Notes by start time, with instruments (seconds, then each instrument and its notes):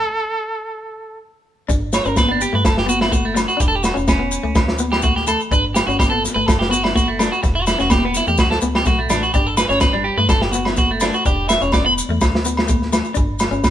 Already playing: trumpet A4
1.69 fm bass G1, clean electric guitar D4, kick, muted conga, maracas
1.93 clean electric guitar C#5, snare, muted conga, low agogo, maracas
2.05 fm bass G1, clean electric guitar C#4 A#4, maracas
2.16 clean electric guitar B4, kick, snare, high conga, low agogo, maracas
2.29 clean electric guitar B3 D4
2.41 clean electric guitar G4, maracas
2.53 fm bass G2, clean electric guitar A3 B4
2.65 fm bass F#1, clean electric guitar A4, kick, snare, muted conga, low agogo, maracas
2.78 clean electric guitar G4, snare
2.86 clean electric guitar B3 F#4, high conga, maracas
3.01 clean electric guitar E4, snare, low agogo
3.12 clean electric guitar A3 F#4, kick, high conga, maracas
3.25 clean electric guitar A3
3.35 clean electric guitar A3, muted clean electric guitar stroke, snare, muted conga, low agogo, maracas
3.48 clean electric guitar F#4, maracas
3.57 fm bass E1, clean electric guitar D4 G4, kick, snare, muted conga, maracas
3.68 clean electric guitar A4
3.75 clean electric guitar G4
3.83 clean electric guitar F#4, snare, muted conga, low agogo, maracas
3.94 fm bass E1, clean electric guitar C#4, muted clean electric guitar stroke, maracas
4.08 clean electric guitar C#4, kick, snare, high conga, low agogo, maracas
4.19 clean electric guitar B3
4.31 maracas
4.43 fm bass C#2, clean electric guitar A3
4.55 fm bass D2, kick, snare, muted conga, low conga, low agogo, maracas
4.68 snare
4.78 clean electric guitar B3, high conga, maracas
4.92 clean electric guitar G4, snare, low agogo
5.02 clean electric guitar A3 F#4, kick, high conga, maracas
5.16 clean electric guitar G4, snare
5.27 clean electric guitar A3 A4, muted conga, low conga, low agogo, maracas
5.40 maracas
5.51 fm bass G1, clean electric guitar D4 B4, kick, muted conga, maracas
5.74 clean electric guitar G4, snare, muted conga, low agogo, maracas
5.87 fm bass G1, clean electric guitar C#4 F#4, maracas
5.99 clean electric guitar G4, kick, snare, high conga, low agogo, maracas
6.10 clean electric guitar B3 A4
6.24 snare, maracas
6.34 fm bass G1, clean electric guitar A3 B4
6.46 fm bass F#1, clean electric guitar A4, kick, snare, muted conga, low agogo, maracas
6.59 clean electric guitar G4, snare
6.70 clean electric guitar B3 F#4, high conga, maracas
6.83 clean electric guitar E4, snare, low agogo
6.95 clean electric guitar A3 F#4, kick, snare, high conga, maracas
7.08 clean electric guitar A3
7.19 clean electric guitar A3 D4, snare, low agogo, maracas
7.32 clean electric guitar F#4, maracas
7.43 fm bass E1, muted clean electric guitar stroke, kick, snare, muted conga, maracas
7.55 clean electric guitar F#4
7.67 clean electric guitar E4, snare, muted conga, low agogo, maracas
7.79 fm bass E1, clean electric guitar C#4 F#4, snare, maracas
7.90 clean electric guitar G4, kick, snare, high conga, low agogo, maracas
8.05 clean electric guitar B3
8.14 clean electric guitar E4, snare, maracas
8.27 fm bass E2, clean electric guitar A3 G4, maracas
8.38 fm bass D2, clean electric guitar F#4, kick, snare, muted conga, low conga, low agogo, maracas
8.51 clean electric guitar A4, snare
8.61 fm bass C#2, clean electric guitar B3, high conga, maracas
8.75 clean electric guitar G4, snare, low agogo
8.85 fm bass B1, clean electric guitar A3 F#4, kick, snare, high conga, maracas
8.99 clean electric guitar A3
9.09 fm bass A1, clean electric guitar A3 D4, snare, muted conga, low conga, low agogo, maracas
9.23 clean electric guitar F#4, maracas
9.33 fm bass G1, clean electric guitar D4 G4, kick, snare, muted conga, maracas
9.47 clean electric guitar A4
9.57 clean electric guitar B4, snare, low agogo, maracas
9.69 fm bass G1, clean electric guitar C#4 C#5, snare, maracas
9.80 clean electric guitar B4, kick, snare, high conga, low agogo, maracas
9.93 clean electric guitar G3 D4
10.04 clean electric guitar G4
10.18 fm bass G2, clean electric guitar A3 B4
10.29 fm bass F#1, clean electric guitar A4, kick, snare, low agogo, maracas
10.42 clean electric guitar G4, snare
10.52 clean electric guitar B3 F#4, high conga, maracas
10.65 clean electric guitar E4, snare, low agogo
10.76 clean electric guitar F#4, kick, snare, high conga, maracas
10.91 clean electric guitar A3
11.00 clean electric guitar A3 D4, snare, muted conga, low agogo, maracas
11.14 clean electric guitar F#4, maracas
11.24 fm bass E1, clean electric guitar D4 G4, kick, muted conga, maracas
11.48 clean electric guitar E5, snare, muted conga, low agogo, maracas
11.61 fm bass E1, clean electric guitar C#4 C#5, maracas
11.72 clean electric guitar D5, kick, snare, high conga, low agogo, maracas
11.86 clean electric guitar B3 B5
11.98 maracas
12.09 fm bass E2, clean electric guitar A3
12.21 fm bass D2, kick, snare, muted conga, low conga, low agogo, maracas
12.35 snare
12.44 clean electric guitar B3, high conga, maracas
12.57 snare, low agogo
12.68 clean electric guitar A3, kick, high conga, maracas
12.82 snare
12.92 clean electric guitar A3, snare, muted conga, low conga, low agogo, maracas
13.05 maracas
13.14 fm bass G1, clean electric guitar D4, kick, muted conga, maracas
13.39 snare, muted conga, low agogo, maracas
13.51 fm bass G1, clean electric guitar C#4, maracas
13.64 kick, snare, high conga, low agogo, maracas